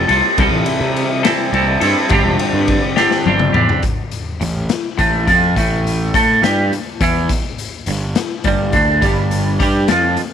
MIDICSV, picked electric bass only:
0, 0, Header, 1, 2, 480
1, 0, Start_track
1, 0, Key_signature, 0, "minor"
1, 0, Tempo, 576369
1, 321, Time_signature, 6, 3, 24, 8
1, 8605, End_track
2, 0, Start_track
2, 0, Title_t, "Picked electric bass"
2, 0, Program_c, 0, 34
2, 74, Note_on_c, 0, 36, 96
2, 172, Note_off_c, 0, 36, 0
2, 315, Note_on_c, 0, 36, 109
2, 412, Note_off_c, 0, 36, 0
2, 425, Note_on_c, 0, 33, 88
2, 526, Note_off_c, 0, 33, 0
2, 669, Note_on_c, 0, 48, 92
2, 862, Note_off_c, 0, 48, 0
2, 1270, Note_on_c, 0, 36, 85
2, 1461, Note_off_c, 0, 36, 0
2, 1512, Note_on_c, 0, 43, 92
2, 1608, Note_off_c, 0, 43, 0
2, 1752, Note_on_c, 0, 31, 98
2, 1847, Note_off_c, 0, 31, 0
2, 1866, Note_on_c, 0, 28, 90
2, 1963, Note_off_c, 0, 28, 0
2, 2109, Note_on_c, 0, 43, 87
2, 2299, Note_off_c, 0, 43, 0
2, 2715, Note_on_c, 0, 31, 78
2, 2903, Note_off_c, 0, 31, 0
2, 2950, Note_on_c, 0, 40, 86
2, 3045, Note_off_c, 0, 40, 0
2, 3671, Note_on_c, 0, 33, 72
2, 3894, Note_off_c, 0, 33, 0
2, 4153, Note_on_c, 0, 33, 82
2, 4375, Note_off_c, 0, 33, 0
2, 4392, Note_on_c, 0, 41, 82
2, 4615, Note_off_c, 0, 41, 0
2, 4634, Note_on_c, 0, 33, 90
2, 5080, Note_off_c, 0, 33, 0
2, 5116, Note_on_c, 0, 45, 83
2, 5338, Note_off_c, 0, 45, 0
2, 5354, Note_on_c, 0, 43, 97
2, 5577, Note_off_c, 0, 43, 0
2, 5835, Note_on_c, 0, 40, 90
2, 6058, Note_off_c, 0, 40, 0
2, 6554, Note_on_c, 0, 31, 74
2, 6779, Note_off_c, 0, 31, 0
2, 7035, Note_on_c, 0, 31, 93
2, 7260, Note_off_c, 0, 31, 0
2, 7274, Note_on_c, 0, 38, 88
2, 7500, Note_off_c, 0, 38, 0
2, 7513, Note_on_c, 0, 31, 91
2, 7965, Note_off_c, 0, 31, 0
2, 7997, Note_on_c, 0, 43, 84
2, 8223, Note_off_c, 0, 43, 0
2, 8235, Note_on_c, 0, 41, 97
2, 8462, Note_off_c, 0, 41, 0
2, 8605, End_track
0, 0, End_of_file